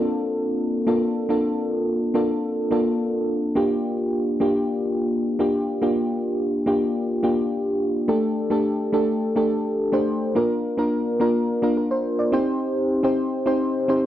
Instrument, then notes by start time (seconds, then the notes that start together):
fm electric piano
Already playing: A#3 C4 D4 F4 A4
0.87 A#3 D4 F4 A4
1.29 A#3 D4 F4 A4
2.14 A#3 D4 F4 A4
2.71 A#3 D4 F4 A4
3.55 A#3 D4 F4 G4
4.40 A#3 D4 F4 G4
5.39 A#3 D4 F4 G4
5.82 A#3 D4 F4 G4
6.66 A#3 D4 F4 G4
7.23 A#3 D4 F4 G4
8.08 A3 D4 G4 A4
8.50 A3 D4 G4 A4
8.93 A3 D4 G4 A4
9.36 A3 D4 G4 A4
9.92 A3 D4 G4 C5
10.35 A#3 D4 F4 A#4
10.77 A#3 D4 F4 A#4
11.20 A#3 D4 F4 A#4
11.62 A#3 D4 F4 A#4
11.77 A#4
11.91 C5
12.19 D5
12.32 C4 D#4 G4 C5
13.03 C4 D#4 G4 C5
13.46 C4 D#4 G4 C5
13.88 C4 D#4 G4 C5